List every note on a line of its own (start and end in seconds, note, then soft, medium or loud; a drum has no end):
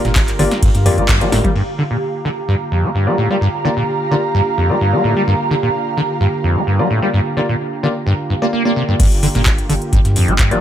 0.00 1.51 D3 medium
0.00 1.51 A#3 medium
0.00 1.51 F4 medium
0.00 1.54 G4 medium
0.00 1.54 A#4 medium
0.00 1.56 F5 medium
0.00 1.56 A#5 medium
0.05 0.33 G1 loud
0.05 0.11 A#2 medium
0.05 snare soft
0.05 closed hi-hat soft
0.16 kick loud
0.16 snare soft
0.16 clap loud
0.16 closed hi-hat medium
0.16 ride medium
0.28 clap soft
0.28 closed hi-hat medium
0.39 0.47 G1 medium
0.39 0.43 D3 loud
0.39 0.47 A#3 loud
0.39 0.47 F4 medium
0.39 0.47 G4 medium
0.39 0.47 D5 loud
0.39 open hi-hat medium
0.51 snare medium
0.51 closed hi-hat soft
0.62 0.69 G2 loud
0.62 kick loud
0.62 closed hi-hat medium
0.62 ride medium
0.75 0.89 G2 medium
0.75 snare soft
0.75 closed hi-hat medium
0.86 0.99 F2 medium
0.86 0.96 A#3 loud
0.86 0.96 F4 medium
0.86 0.96 G4 loud
0.86 0.96 D5 loud
0.86 open hi-hat loud
0.98 1.26 G1 loud
0.98 1.04 A#3 medium
0.98 1.05 A#3 medium
0.98 1.05 F4 medium
0.98 1.05 G4 medium
0.98 1.05 D5 loud
0.98 closed hi-hat soft
1.09 1.23 G2 medium
1.09 kick loud
1.09 clap loud
1.09 closed hi-hat medium
1.09 ride medium
1.21 1.30 G3 loud
1.21 1.54 A#3 medium
1.21 1.54 F4 medium
1.21 1.54 G4 medium
1.21 1.54 D5 medium
1.21 closed hi-hat medium
1.32 1.40 G1 loud
1.32 1.42 A2 medium
1.32 snare medium
1.32 open hi-hat medium
1.32 high tom medium
1.44 1.50 G3 medium
1.44 kick medium
1.44 closed hi-hat soft
1.44 mid tom medium
1.55 1.62 G2 loud
1.55 8.96 D3 medium
1.55 8.96 A#3 medium
1.55 8.96 F4 medium
1.55 9.00 G4 medium
1.55 8.96 G4 medium
1.55 crash medium
1.73 9.00 F5 medium
1.73 9.00 A#5 medium
1.79 1.83 D3 medium
1.91 1.97 A#2 medium
2.25 2.29 D3 loud
2.48 2.55 G2 medium
2.72 2.85 F2 medium
2.84 2.90 A#3 medium
2.95 3.08 G2 medium
3.07 3.16 G3 loud
3.07 3.14 A#3 medium
3.07 3.14 F4 medium
3.07 3.14 G4 medium
3.07 3.14 D5 medium
3.18 3.28 A2 medium
3.30 3.37 G3 medium
3.30 3.37 A#3 medium
3.30 3.37 F4 medium
3.30 3.37 G4 medium
3.30 3.37 D5 medium
3.41 3.48 G2 medium
3.65 3.69 D3 medium
3.65 3.72 A#3 medium
3.65 3.72 F4 medium
3.65 3.72 G4 medium
3.65 3.72 D5 medium
3.77 3.83 A#2 medium
4.11 4.15 D3 loud
4.11 4.19 A#3 medium
4.11 4.19 F4 medium
4.11 4.19 G4 medium
4.11 4.19 D5 medium
4.34 4.41 G2 loud
4.58 4.71 F2 medium
4.70 4.76 A#3 medium
4.70 4.77 A#3 medium
4.70 4.77 F4 medium
4.70 4.77 G4 medium
4.70 4.77 D5 medium
4.81 4.95 G2 medium
4.93 5.02 G3 medium
4.93 6.76 A#3 medium
4.93 6.76 F4 medium
4.93 6.76 G4 medium
4.93 6.76 D5 medium
5.04 5.14 A2 medium
5.17 5.23 G3 medium
5.28 5.34 G2 loud
5.51 5.55 D3 loud
5.63 5.69 A#2 medium
5.97 6.01 D3 loud
6.20 6.27 G2 medium
6.44 6.58 F2 medium
6.56 6.62 A#3 medium
6.67 6.81 G2 medium
6.79 6.88 G3 loud
6.79 6.86 A#3 medium
6.79 6.86 F4 medium
6.79 6.86 G4 medium
6.79 6.86 D5 medium
6.90 7.00 A2 medium
7.02 7.09 G3 medium
7.02 7.09 A#3 medium
7.02 7.09 F4 medium
7.02 7.09 G4 medium
7.02 7.09 D5 medium
7.14 7.20 G2 medium
7.37 7.41 D3 medium
7.37 7.44 A#3 medium
7.37 7.44 F4 medium
7.37 7.44 G4 medium
7.37 7.44 D5 medium
7.49 7.55 A#2 medium
7.83 7.87 D3 loud
7.83 7.91 A#3 medium
7.83 7.91 F4 medium
7.83 7.91 G4 medium
7.83 7.91 D5 medium
8.07 8.13 G2 loud
8.30 8.34 G2 medium
8.42 8.46 A#3 loud
8.42 8.49 A#3 medium
8.42 8.49 F4 medium
8.42 8.49 G4 medium
8.42 8.49 D5 medium
8.53 8.63 A#3 medium
8.65 8.98 A#3 medium
8.65 8.71 A#3 loud
8.65 8.98 F4 medium
8.65 8.98 G4 medium
8.65 8.98 D5 medium
8.76 8.83 C3 medium
8.88 8.95 G2 medium
9.00 9.28 G1 loud
9.00 9.06 G2 loud
9.00 10.61 D3 medium
9.00 10.61 A#3 medium
9.00 10.61 F4 medium
9.00 10.61 G4 medium
9.00 kick loud
9.00 closed hi-hat medium
9.00 crash loud
9.12 closed hi-hat medium
9.23 9.27 D3 loud
9.23 open hi-hat loud
9.35 9.63 G1 medium
9.35 9.41 A#2 medium
9.35 snare soft
9.35 closed hi-hat soft
9.46 kick loud
9.46 clap loud
9.46 closed hi-hat medium
9.58 closed hi-hat medium
9.69 9.77 G1 medium
9.69 9.73 D3 loud
9.69 open hi-hat medium
9.82 closed hi-hat soft
9.93 9.99 G2 loud
9.93 kick loud
9.93 closed hi-hat medium
10.05 10.19 G2 medium
10.05 snare soft
10.05 closed hi-hat medium
10.16 10.30 F2 medium
10.16 open hi-hat loud
10.28 10.56 G1 loud
10.28 10.34 A#3 medium
10.28 closed hi-hat soft
10.39 10.53 G2 medium
10.39 kick loud
10.39 clap loud
10.39 closed hi-hat medium
10.51 10.60 G3 loud
10.51 10.58 A#3 medium
10.51 10.58 F4 medium
10.51 10.58 G4 medium
10.51 10.58 D5 loud
10.51 closed hi-hat medium